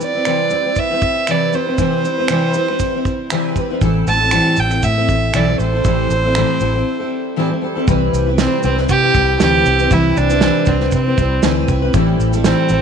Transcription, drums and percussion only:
0.01 shaker
0.25 finger snap, shaker
0.50 shaker
0.76 kick, shaker
1.02 kick, shaker
1.27 finger snap, shaker
1.53 shaker
1.78 kick, shaker
2.05 shaker
2.28 finger snap, shaker
2.54 shaker
2.69 finger snap
2.79 kick, shaker
3.05 kick, shaker
3.30 finger snap, shaker
3.56 kick, shaker
3.81 kick, shaker
4.07 shaker
4.31 finger snap, shaker
4.56 shaker
4.71 finger snap, shaker
4.83 kick, shaker
5.09 kick, shaker
5.34 finger snap, shaker
5.59 shaker
5.84 kick, shaker
6.10 shaker
6.35 finger snap, shaker
6.60 shaker
7.88 kick, shaker
8.14 shaker
8.38 snare, shaker
8.63 shaker
8.78 snare
8.89 kick, shaker
9.15 kick, shaker
9.40 snare, shaker
9.66 shaker
9.79 shaker
9.91 kick, shaker
10.17 shaker
10.30 shaker
10.41 snare, shaker
10.66 kick, shaker
10.80 snare
10.92 kick, shaker
11.18 kick, shaker
11.43 snare, shaker
11.68 kick, shaker
11.94 kick, shaker
12.20 shaker
12.33 shaker
12.44 snare, shaker
12.69 shaker

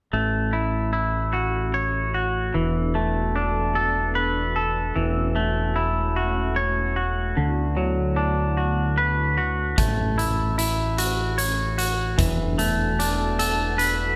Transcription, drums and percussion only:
9.78 kick, closed hi-hat
10.19 closed hi-hat
10.59 closed hi-hat
10.98 closed hi-hat
11.39 closed hi-hat
11.79 closed hi-hat
12.19 kick, closed hi-hat
12.59 closed hi-hat
13.00 closed hi-hat
13.39 closed hi-hat
13.79 closed hi-hat

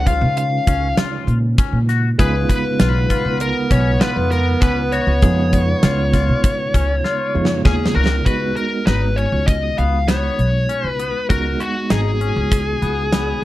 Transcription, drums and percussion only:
0.07 kick, closed hi-hat
0.37 closed hi-hat
0.67 kick, closed hi-hat
0.97 snare, closed hi-hat
1.28 closed hi-hat
1.58 kick, closed hi-hat
1.89 snare, closed hi-hat
2.19 kick, closed hi-hat
2.49 kick, closed hi-hat
2.80 snare, closed hi-hat
3.10 kick, closed hi-hat
3.40 closed hi-hat
3.71 kick, closed hi-hat
4.01 snare, closed hi-hat
4.31 snare, closed hi-hat
4.61 kick, snare, closed hi-hat
4.92 closed hi-hat
5.22 kick, closed hi-hat
5.53 kick, closed hi-hat
5.83 snare, closed hi-hat
6.13 kick, snare, closed hi-hat
6.44 kick, closed hi-hat
6.74 kick, closed hi-hat
7.04 snare
7.45 snare
7.65 kick, snare
7.86 snare
8.06 snare
8.26 kick, closed hi-hat
8.56 closed hi-hat
8.87 snare, closed hi-hat
9.17 closed hi-hat
9.48 kick, closed hi-hat
9.78 closed hi-hat
10.08 snare, closed hi-hat
10.39 closed hi-hat
10.69 closed hi-hat
10.99 closed hi-hat
11.30 kick, closed hi-hat
11.60 closed hi-hat
11.90 snare, closed hi-hat
12.21 closed hi-hat
12.51 kick, closed hi-hat
12.82 closed hi-hat
13.12 snare, closed hi-hat

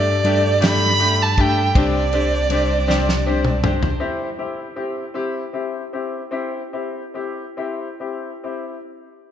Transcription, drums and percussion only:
0.25 ride
0.62 snare, ride
1.01 ride
1.38 kick, ride
1.75 kick, ride
2.13 ride
2.50 ride
2.90 snare
3.09 snare
3.45 mid tom
3.64 mid tom
3.83 floor tom

